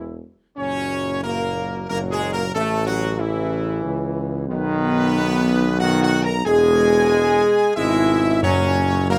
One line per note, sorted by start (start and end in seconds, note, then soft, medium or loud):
0.00 0.20 E1 medium
0.00 0.25 E2 loud
0.00 0.20 E3 loud
0.00 0.20 E4 loud
0.57 1.85 F#1 loud
0.57 1.20 A#2 medium
0.57 1.20 F#3 medium
0.57 1.19 C#4 loud
0.57 1.20 C#5 loud
1.23 1.86 A#2 medium
1.23 1.86 F#3 medium
1.23 1.86 A#3 loud
1.23 1.85 A#4 loud
1.89 2.51 F#1 loud
1.89 2.51 A#2 loud
1.89 2.51 F#3 loud
1.89 2.00 A#3 loud
1.89 1.99 A#4 loud
2.11 2.32 G#3 loud
2.11 2.31 G#4 loud
2.33 2.44 A#3 loud
2.33 2.53 A#4 loud
2.55 3.85 A1 loud
2.55 3.19 C#3 loud
2.55 3.18 E3 loud
2.55 2.85 A3 loud
2.55 2.85 A4 loud
2.86 3.17 F#3 loud
2.86 3.17 F#4 loud
3.20 4.45 C#3 loud
3.20 4.45 E3 loud
3.20 4.17 E3 loud
3.20 4.17 E4 loud
3.84 4.50 C#2 loud
4.48 6.45 B1 loud
4.48 5.77 B2 loud
4.48 5.76 D#3 loud
4.48 5.76 B3 loud
4.48 5.76 B4 loud
5.80 6.29 B2 loud
5.80 6.29 D#3 loud
5.80 6.00 F#4 loud
5.80 6.00 F#5 loud
6.02 6.23 F#4 loud
6.02 6.22 F#5 loud
6.24 6.35 A#4 loud
6.24 6.46 A#5 loud
6.45 7.45 E1 loud
6.45 7.73 B2 loud
6.45 7.75 G#3 loud
6.45 7.73 G#4 loud
6.45 7.73 G#5 loud
7.76 8.44 G#1 loud
7.76 8.39 B2 loud
7.76 8.39 G#3 loud
7.76 8.44 E4 loud
7.76 8.39 E5 loud
8.43 9.19 F#1 loud
8.43 9.19 F#2 loud
8.43 9.09 A#2 loud
8.43 9.07 F#3 loud
8.43 9.07 C#4 loud
8.43 9.06 C#5 loud
9.10 9.19 A#2 loud
9.10 9.19 F#3 loud
9.10 9.19 A#3 loud
9.10 9.19 A#4 loud